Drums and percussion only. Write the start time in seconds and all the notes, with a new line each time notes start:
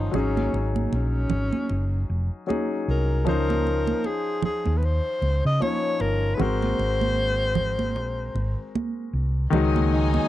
0.14 muted conga, low conga
0.37 high conga
0.54 muted conga
0.76 high conga
0.93 muted conga
1.30 muted conga, low conga
1.53 high conga
1.69 muted conga
2.50 muted conga, high conga
3.27 muted conga, low conga
3.50 high conga
3.67 muted conga
3.87 high conga
4.04 muted conga
4.42 muted conga, low conga
4.65 high conga
4.82 muted conga
5.22 muted conga
5.62 high conga
6.00 muted conga
6.40 muted conga, low conga
6.62 high conga
6.79 muted conga
7.01 high conga
7.55 low conga
7.79 high conga
7.96 muted conga
8.36 muted conga
8.75 muted conga, high conga
9.53 muted conga, low conga
9.76 high conga
10.14 high conga